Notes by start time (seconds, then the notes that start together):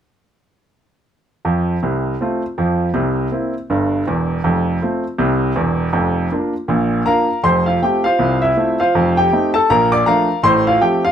1.45 F2 F3
1.83 C2 C3
2.21 A3 C4 F4
2.58 F2 F3
2.94 C2 C3
3.32 A#3 C4 E4
3.70 G1 G2
4.07 E1 E2
4.44 F1 F2
4.82 A3 C4 F4
5.18 C2 C3
5.56 E1 E2
5.93 F1 F2
6.32 A#3 D4 F4
6.68 A#1 A#2
7.06 A#3 D4 F4 A#4 F5 A#5
7.43 F1 F2 C5 C6
7.66 F4 F5
7.82 A3 C4 F4 G4 G5
8.04 F4 C5 F5
8.19 C2 C3
8.42 E4 E5
8.57 A3 C4 F4
8.80 F4 C5 F5
8.95 F1 F2
9.17 G4 G5
9.32 A3 C4 D#4
9.54 A4 A5
9.70 A#1 A#2 A#4 A#5
9.92 D5 D6
10.06 F3 A3 D4 A#4 F5 A#5
10.43 A1 A2 C5 C6
10.67 F4 F5
10.81 F3 A3 C4 G4 G5
11.05 F4 F5